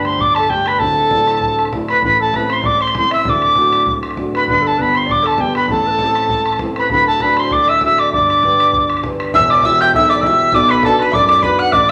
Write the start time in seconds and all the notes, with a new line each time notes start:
Already playing: G1 G2 A3 D4 G4
0.05 C5 C6, bodhran
0.19 D5 D6, bodhran
0.35 A4 A5, bodhran
0.43 bodhran
0.50 A3 D4 G4 G5, bodhran
0.66 B4 B5, bodhran
0.79 D1 D2 A4 A5, bodhran
1.11 A3 D4 E4, bodhran
1.27 bodhran
1.41 bodhran
1.59 bodhran
1.65 bodhran
1.73 A3 D4 E4, bodhran
1.88 B4 B5, bodhran
2.03 A1 A2 B4 B5, bodhran
2.19 A4 A5
2.34 A3 C4 E4 B4 B5, bodhran
2.49 C5 C6, bodhran
2.62 D5 D6, bodhran
2.80 C5 C6, bodhran
2.87 bodhran
2.93 A3 C5, bodhran
2.97 C4 E4 C6
3.11 E5 E6, bodhran
3.24 D1 D2 D5, bodhran
3.29 D6
3.42 bodhran
3.55 A3 D4 F#4, bodhran
3.73 bodhran
3.86 bodhran
4.03 bodhran
4.11 bodhran
4.17 A3 D4 F#4, bodhran
4.33 B4 B5, bodhran
4.46 G1 G2 B4 B5, bodhran
4.61 A4
4.67 A5
4.77 B3 D4 G4 B4, bodhran
4.82 B5
4.94 C5 C6, bodhran
5.06 D5, bodhran
5.11 D6
5.23 A4, bodhran
5.27 A5
5.32 bodhran
5.38 B3 D4 G4 G5, bodhran
5.55 B4 B5, bodhran
5.68 A1 A2 A4 A5, bodhran
5.86 B4
5.90 A4
5.99 C4 E4 A4, bodhran
6.03 G4
6.07 A4
6.15 bodhran
6.29 bodhran
6.46 bodhran
6.53 bodhran
6.59 C4 E4 A4, bodhran
6.76 B4 B5, bodhran
6.90 D1 D2 B4 B5, bodhran
7.07 A4 A5
7.20 D4 F#4 A4 B4 B5, bodhran
7.37 C5 C6, bodhran
7.51 D5 D6, bodhran
7.68 E5 E6, bodhran
7.81 D4 F#4 A4 E5, bodhran
7.85 E6
7.98 D5 D6, bodhran
8.12 G1 G2 D5 D6, bodhran
8.30 bodhran
8.43 D4 G4 B4, bodhran
8.60 bodhran
8.73 bodhran
8.90 bodhran
8.97 bodhran
9.04 D4 G4 B4, bodhran
9.20 bodhran
9.33 E1 E2 E5 E6, bodhran
9.50 D5 D6, bodhran
9.63 E4 F#4 G4 E5 E6, bodhran
9.81 G5 G6, bodhran
9.93 B1 E5 E6, bodhran
10.09 D5 D6, bodhran
10.17 bodhran
10.21 E4 F#4 G4 E5 E6, bodhran
10.26 E5
10.52 B1 B2 D5 D6, bodhran
10.68 B4 B5, bodhran
10.83 D4 F#4 A4 B4 A5, bodhran
10.98 B4 B5, bodhran
11.12 F#2 D5 E5 D6, bodhran
11.28 D5 D6, bodhran
11.32 D5, bodhran
11.42 D4 F#4 B4 B5, bodhran
11.59 F#5 F#6
11.70 A1 A2 D5 E5 D6, bodhran
11.75 D5